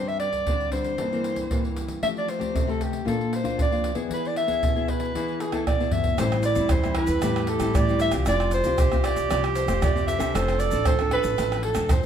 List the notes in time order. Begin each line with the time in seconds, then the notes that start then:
Already playing: G2 G3 C4 D4
0.08 E5, pandeiro
0.20 D5, pandeiro
0.33 pandeiro, surdo
0.47 D3 G3 C4 D4, pandeiro, surdo
0.60 pandeiro
0.71 G3 C4 D4 C5, pandeiro, surdo
0.84 pandeiro
0.98 G2 E3 A#3 C4, pandeiro, surdo
1.12 E3 A#3 C4, pandeiro
1.24 pandeiro
1.36 pandeiro, surdo
1.50 G2 E3 A#3 C4, pandeiro, surdo
1.65 pandeiro
1.76 pandeiro
1.88 pandeiro, surdo
2.02 F3 A3 C4 G4 E5, pandeiro, surdo
2.17 D5, pandeiro
2.28 C5, pandeiro
2.38 A3 C4 G4, pandeiro, surdo
2.54 C3, pandeiro, surdo
2.67 A3 C4 G4 A4, pandeiro
2.81 G4, pandeiro, surdo
2.93 pandeiro
3.05 A#2 A#3 D4 F4 A4, pandeiro, surdo
3.21 pandeiro
3.33 C5, pandeiro
3.43 A#3 D4 F4, pandeiro, surdo
3.57 F2, pandeiro, surdo
3.62 D5
3.71 A#3 D4 F4, pandeiro
3.84 pandeiro
3.95 B3 E4 G#4, pandeiro, surdo
4.09 E3, pandeiro, surdo
4.14 B4
4.25 D5, pandeiro
4.36 E5, pandeiro
4.47 B3 E4 G#4, pandeiro, surdo
4.63 B2, pandeiro, surdo
4.75 B3 E4 G#4, pandeiro
4.88 B4, pandeiro, surdo
5.00 pandeiro
5.15 E3 B3 E4 G#4, pandeiro, surdo
5.28 pandeiro
5.40 G#4, pandeiro
5.52 B3 E4 G#4 A4, pandeiro, tamborim, surdo
5.67 B2 D5, pandeiro, tamborim, surdo
5.80 B3 E4 G#4, pandeiro
5.91 E5, surdo, pandeiro
6.04 pandeiro, surdo
6.18 A1 A2 G3 C4 E4 C5, pandeiro, tamborim, shaker, surdo
6.32 pandeiro, tamborim, shaker
6.43 D5, pandeiro, shaker
6.55 E2 G3 C4 E4, pandeiro, shaker, surdo
6.69 E2 E3 C5, pandeiro, tamborim, shaker, surdo
6.84 G3 C4 E4, pandeiro, tamborim, shaker
6.95 B4, pandeiro, tamborim, surdo
7.07 E2, pandeiro, shaker
7.22 E2 A2 G3 C4 E4 G4, pandeiro, tamborim, shaker, surdo
7.36 pandeiro, tamborim, shaker
7.47 A4, pandeiro
7.60 A1 G3 C4 E4, pandeiro, tamborim, shaker, surdo
7.75 A2 E3 D5, pandeiro, tamborim, shaker, surdo
7.89 G3 C4 E4, pandeiro, shaker
8.00 E5, pandeiro, shaker, surdo
8.12 C2 C4 F4 G4, pandeiro, tamborim, shaker, surdo
8.26 F1 F3 F4 D5, pandeiro, tamborim, shaker, surdo
8.40 pandeiro, tamborim, shaker
8.51 C5, pandeiro, shaker
8.64 C2 C4 F4 G4, pandeiro, shaker, surdo
8.78 C2 C3 G4, pandeiro, tamborim, shaker, surdo
8.92 C4 F4 G4, pandeiro, tamborim, shaker
9.04 D5, pandeiro, tamborim, shaker, surdo
9.16 C2, pandeiro, shaker
9.31 C2 F3 C4 F4 G4 D5, pandeiro, tamborim, shaker, surdo
9.44 pandeiro, tamborim, shaker
9.55 C5, pandeiro, shaker
9.68 F1 C4 F4 G4 C5, pandeiro, tamborim, shaker, surdo
9.82 F2 C3 D5, pandeiro, tamborim, shaker, surdo
9.95 C4 F4 G4, pandeiro, shaker
10.07 E5, pandeiro, shaker, surdo
10.18 C2 C4 D4 A4, pandeiro, tamborim, shaker, surdo
10.34 F1 F3 A4 C5, pandeiro, tamborim, shaker, surdo
10.48 pandeiro, tamborim, shaker
10.60 D5, pandeiro, shaker
10.71 A1 C4 D4 A4, pandeiro, shaker, surdo
10.85 A1 F3 C5, pandeiro, tamborim, shaker, surdo
10.99 C4 D4 A4, pandeiro, tamborim, shaker
11.11 B4, pandeiro, tamborim, surdo
11.24 A1, pandeiro, shaker
11.38 A1 F3 C4 D4 A4, pandeiro, tamborim, shaker, surdo
11.52 pandeiro, tamborim, shaker
11.63 A4, pandeiro
11.75 F1 C4 D4 A4, pandeiro, tamborim, shaker, surdo
11.89 F2 F3 C5, pandeiro, tamborim, shaker, surdo